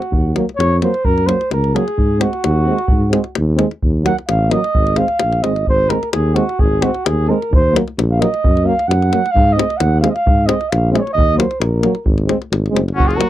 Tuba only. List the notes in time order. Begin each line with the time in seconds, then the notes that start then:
0.12 D#2
0.58 F2
1.05 F#2
1.51 C#2
1.98 G#2
2.45 D#2
2.91 G#2
3.37 D#2
3.84 D#2
4.29 A1
4.75 G#1
5.22 A#1
5.45 G#1
5.68 G#1
6.15 D#2
6.61 G#1
7.06 D#2
7.52 D#2
7.98 A#1
8.45 F#2
8.89 F#2
9.35 G#2
9.80 D#2
10.26 G#2
10.72 A#1
11.15 D#2
11.60 A#1
12.05 G#1
12.51 G#1
12.72 F#1
12.94 F#1